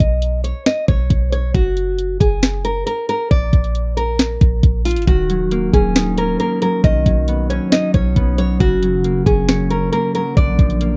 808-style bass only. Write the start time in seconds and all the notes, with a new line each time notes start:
0.00 B1
0.88 B1
1.10 B1
1.55 F#1
2.21 F#1
3.31 A#1
3.53 A#1
4.41 A#1
4.63 A#1
4.96 G#1
5.07 D#1
5.74 D#1
6.84 B1
7.06 B1
7.94 B1
8.16 B1
8.60 F#1
9.26 F#1
10.37 A#1
10.59 A#1